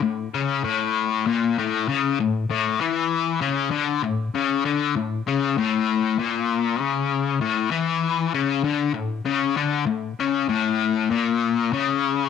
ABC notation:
X:1
M:4/4
L:1/8
Q:1/4=98
K:none
V:1 name="Overdriven electric guitar" clef=bass
A,, ^C, A,,2 _B,, A,, C, A,, | A,, E,2 ^C, D, A,, C, D, | A,, ^C, A,,2 _B,,2 C,2 | A,, E,2 ^C, D, A,, C, D, |
A,, ^C, A,,2 _B,,2 C,2 |]